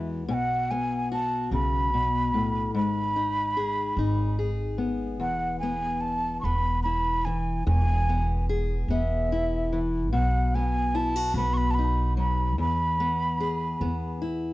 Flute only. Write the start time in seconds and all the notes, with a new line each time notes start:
0.30 F#5 G#5
0.71 G#5
1.13 A5
1.53 B5
2.76 B5
5.21 F#5
5.59 G#5
6.01 A5
6.41 B5 C#6
6.83 B5
7.25 G#5
7.68 G#5
8.91 E5
10.13 F#5
10.55 G#5
10.96 A5
11.37 B5
11.54 B5 C#6
11.71 A5 B5
12.19 B5
12.61 B5